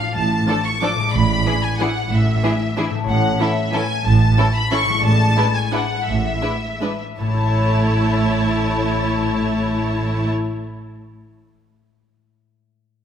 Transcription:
Already playing: A2 A3 F4 D5 F5
0.15 A1 A2 A5
0.48 F3 D4 A4
0.64 C#6
0.82 F3 D4 A4 D6
0.95 A2
1.00 G#3
1.04 E4
1.08 A1 D5
1.13 A2 B5
1.46 E3 D4 E4 G#4
1.63 G#5
1.79 E3 D4 E4 G#4 F#5
2.10 A1 A2 E5
2.43 E3 D4 E4 G#4
2.77 E3 D4 E4 G#4
2.90 A2
2.95 A3
2.99 E4
3.04 A1 C#5
3.08 A2 F#5
3.40 E3 C#4 E4 A4 E5
3.73 E3 C#4 E4 A4 G#5
4.05 A1 A2 A5
4.38 E3 C#4 E4 A4
4.54 B5
4.71 E3 C#4 E4 A4 C#6
4.85 A2
4.90 G#3
4.94 E4
4.99 D5
5.03 A1 A2 A5
5.37 G#3 D4 E4 B4
5.55 G#5
5.72 G#3 D4 E4 B4 F#5
6.05 A1 A2 E5
6.42 G#3 D4 E4 B4
6.81 G#3 D4 E4 B4
7.20 A1 A2 A3 E4 C#5 A5
7.27 A3
7.34 E4
7.41 C#5
7.48 E5

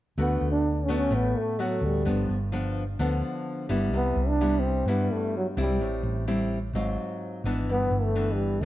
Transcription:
0.18 D2 D3 A3 B3 F#4
0.41 D2
0.52 D4
0.83 C#4
0.88 A3 B3 D4 F#4
0.97 C#4
1.11 A1 A2
1.15 B3
1.38 A3
1.59 F#3 A3 B3 F#4
1.82 D2
1.86 G3
2.05 G1 G2 F3 B3 D4
2.29 G1
2.52 F3 B3 D4
2.99 D2 D3 F3 B3 D4
3.69 G1 G3 B3 E4
3.93 C2 C3
3.97 B3
4.16 C2
4.28 D4
4.41 G3 B3 E4
4.59 C4
4.86 G2 G3 B3 E4
5.12 A3
5.37 F#3
5.57 C2 G3 C4 E4
5.61 G3
5.80 A1 A2
6.03 A1
6.27 G3 C4 E4
6.73 G#1 G#2 F#3 C4 F4
7.44 G#1 E3 B3 D4
7.67 G1 G2
7.72 B3
7.91 G1
8.03 A3
8.15 E3 B3 D4
8.33 G3
8.61 D2

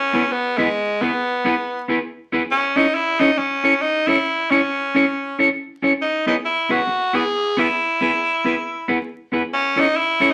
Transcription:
Already playing: C#4
0.13 B3 E4 G#4 B4
0.32 B3
0.57 G#3 B3 E4 G#4 B4
1.01 B3 E4 G#4 B4
1.45 B3 E4 G#4 B4
1.88 B3 E4 G#4 B4
2.32 B3 E4 G#4 B4
2.51 C#4
2.76 C#4 D#4 E4 A4 C#5
2.94 E4
3.20 C#4 D#4 E4 A4 C#5
3.37 C#4, muted clean electric guitar stroke
3.64 C#4 E4 A4 C#5
3.82 D#4
4.07 C#4 E4 A4 C#5
4.50 C#4 E4 A4 C#5
4.95 C#4 E4 A4 C#5
5.39 C#4 E4 A4 C#5
5.82 C#4 E4 A4 C#5
6.02 D#4
6.26 B3 D#4 E4 G#4 B4
6.45 E4
6.69 B3 E4 F#4 G#4 B4
6.87 muted clean electric guitar stroke
7.13 B3 E4 G#4 B4
7.57 B3 E4 G#4 B4
8.01 B3 E4 G#4 B4
8.44 B3 E4 G#4 B4
8.88 B3 E4 G#4 B4
9.32 B3 E4 G#4 B4
9.53 C#4
9.76 C#4 E4 A4 C#5
9.80 D#4
9.97 E4
10.20 C#4 E4 A4 C#5

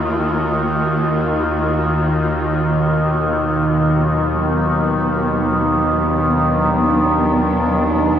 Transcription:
Already playing: D#2 D#3 A#3 F4 F#4
2.70 B2
3.64 F#3
4.29 B3
6.12 D4

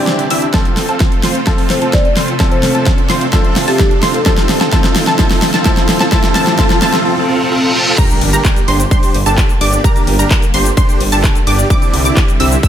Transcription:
Already playing: D3 E3 G3 C4 D4 E4 G4 D5 D6, riser
0.07 snare, closed hi-hat
0.19 closed hi-hat
0.30 C4 D4 E4 G4 E5 E6, open hi-hat
0.42 closed hi-hat
0.53 C3 F3 A3 C4 F4 A4 A5, kick, snare, closed hi-hat
0.65 closed hi-hat
0.77 snare, open hi-hat
0.89 C4 F4 A4 A5, closed hi-hat
1.00 kick, snare, closed hi-hat
1.12 closed hi-hat
1.23 C4 F4 C5 C6, snare, open hi-hat
1.35 closed hi-hat
1.46 F3 A3 C4 F4 A4 A5, kick, snare, closed hi-hat
1.58 open hi-hat
1.70 C5, snare, open hi-hat
1.82 C4 F4 A4 A5, closed hi-hat
1.93 D5, kick, snare, closed hi-hat
2.05 D5, closed hi-hat
2.17 C4 F4 C5 C6, snare, open hi-hat
2.28 closed hi-hat
2.39 F3 A3 C4 F4 A4 E5 A5, kick, snare, closed hi-hat
2.52 C5, closed hi-hat
2.63 snare, open hi-hat
2.75 C4 F4 A4 A5, closed hi-hat
2.86 kick, snare, closed hi-hat
2.98 closed hi-hat
3.10 C4 F4 C5 C6, snare, open hi-hat
3.21 closed hi-hat
3.32 F3 A3 C4 F4 A4 A5, kick, snare, closed hi-hat
3.45 closed hi-hat
3.56 snare, open hi-hat
3.68 C4 F4 G4 A4 A5, open hi-hat
3.79 G4, kick, snare, closed hi-hat
3.91 closed hi-hat
4.02 C4 F4 C5 C6, snare, open hi-hat
4.14 A4, closed hi-hat
4.25 D3 F3 A3 C4 F4 A4 A5, kick, snare, closed hi-hat
4.38 snare, closed hi-hat
4.49 snare, open hi-hat
4.61 C4 F4 A4 A5, snare, closed hi-hat
4.71 F3 A3 C4 F4 A4 A5, kick, snare, closed hi-hat
4.84 snare, closed hi-hat
4.96 snare, open hi-hat
5.07 C4 F4 A4 A5, snare, closed hi-hat
5.18 F3 A3 C4 F4 A4 A5, kick, snare, closed hi-hat
5.31 snare, open hi-hat
5.42 snare, open hi-hat
5.54 C4 F4 A4 A5, snare, closed hi-hat
5.64 F3 A3 C4 A4 A5, kick, snare, closed hi-hat
5.77 snare, closed hi-hat
5.89 snare, open hi-hat
6.00 C4 F4 A4 A5, snare, closed hi-hat
6.11 F3 A3 C4 G4 A4 A5, kick, snare, closed hi-hat
6.24 snare, closed hi-hat
6.34 F3 A3 C4 F4 A4 A5, snare, open hi-hat
6.47 snare, closed hi-hat
6.57 F3 A3 C4 F4 A4 A5, kick, snare, closed hi-hat
6.70 snare, closed hi-hat
6.81 F3 A3 C4 F4 A4 A5, snare, open hi-hat
6.94 snare, closed hi-hat
7.05 C4 F4 A4, reverse cymbal
7.28 C4 F4 A4
7.51 C4 F4 A4
7.75 C4 F4 A4
7.98 D3 G3 A#3 D4 G4 A#4 A#5, kick, closed hi-hat, crash, impact, cabasa
8.10 closed hi-hat, cabasa
8.21 G1, open hi-hat
8.33 D4 G4 A#4 A#5, closed hi-hat, cabasa
8.45 kick, clap, closed hi-hat, cabasa
8.56 closed hi-hat, cabasa
8.68 G1 D4 G4 C5 C6, open hi-hat
8.80 closed hi-hat, cabasa
8.91 D4 G4 C5 C6, kick, closed hi-hat, cabasa
9.03 open hi-hat, cabasa
9.14 G1, open hi-hat
9.26 G1 D4 G4 A4 A5, closed hi-hat, cabasa
9.38 kick, clap, closed hi-hat, cabasa
9.49 closed hi-hat, cabasa
9.61 G1 D4 G4 D5 D6, open hi-hat
9.73 closed hi-hat, cabasa
9.84 D4 G4 A#4 A#5, kick, closed hi-hat, cabasa
9.96 closed hi-hat, cabasa
10.07 G1, open hi-hat
10.19 D4 G4 A#4 A#5, closed hi-hat, cabasa
10.31 kick, clap, closed hi-hat, cabasa
10.42 closed hi-hat, cabasa
10.54 G1 D4 G4 C5 C6, open hi-hat
10.66 closed hi-hat, cabasa
10.77 D4 G4 C5 C6, kick, closed hi-hat, cabasa
10.89 closed hi-hat, cabasa
11.00 G1, open hi-hat
11.12 G1 D4 G4 A4 A5, open hi-hat, cabasa
11.24 kick, clap, closed hi-hat, cabasa
11.35 closed hi-hat, cabasa
11.47 G1 D4 G4 D5 D6, open hi-hat
11.59 closed hi-hat, cabasa
11.70 C4 D4 E4 G4 D5 D6, kick, closed hi-hat, cabasa
11.82 closed hi-hat, cabasa
11.94 C2, open hi-hat
12.05 C4 D4 E4 G4 D5 D6, closed hi-hat, cabasa
12.17 kick, clap, closed hi-hat, cabasa
12.28 closed hi-hat, cabasa
12.40 C2 C4 D4 E4 G4 E5 E6, open hi-hat
12.52 closed hi-hat, cabasa
12.63 C4 D4 E4 G4 E5 E6, kick, closed hi-hat, cabasa

